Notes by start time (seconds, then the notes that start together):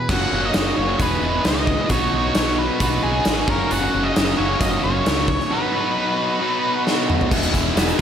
Already playing: B4
0.09 F#1 F#3 A#3 C#4 F#4 F#5, kick, crash
0.33 F#1
0.45 D#5
0.54 F#1, snare, closed hi-hat
0.78 F#1 C#5
0.99 E1 E2 B2 E3 G#3 B3 G#4 B4, kick, closed hi-hat
1.22 E1
1.45 C#2 D#5, snare, closed hi-hat
1.67 kick
1.89 B1 B2 F#3 B3 D#4 F#4 C#5, kick, closed hi-hat
2.13 B1
2.35 B1 C#5, snare, closed hi-hat
2.59 B4
2.80 B1 B2 F#3 B3 D#4 F#4, kick, closed hi-hat
3.03 B1 G#4
3.25 G#1, snare, closed hi-hat
3.47 F#1 F#2 C#3 F#3 A#3 C#4 F#4 A#4, kick
3.71 F#1 F#5, closed hi-hat
3.94 F#1
4.04 D#5
4.16 F#1, snare, closed hi-hat
4.37 F#1 F#2 C#3 F#3 A#3 C#4 F#4 C#5
4.61 F#1 D#5, kick, closed hi-hat
4.83 F#1 C#5
5.06 C#2, snare, closed hi-hat
5.28 kick
5.40 snare
5.50 B2 F#3 B3 D#4 F#4 B4
6.40 B2 F#3 B3 D#4 F#4
6.87 snare
7.10 mid tom
7.21 floor tom
7.31 E1 E2 B2 E3 G#3 B3 E4, kick, crash
7.43 closed hi-hat
7.54 E1, kick, closed hi-hat
7.76 E1 E2 B2 E3 G#3 B3 E4, snare, closed hi-hat
7.89 closed hi-hat
7.98 E2